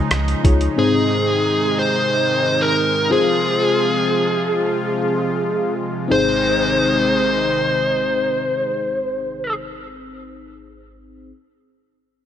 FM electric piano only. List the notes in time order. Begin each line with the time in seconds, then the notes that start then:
Already playing: C#3 D#4 F4 G#4 C#5
0.44 D#4 F4 G#4 C#5
0.77 G#2 C4 D#4 G#4 C5
3.10 C4 F4 G#4 C5
6.08 G#1 C4 D#4 G#4
6.13 C5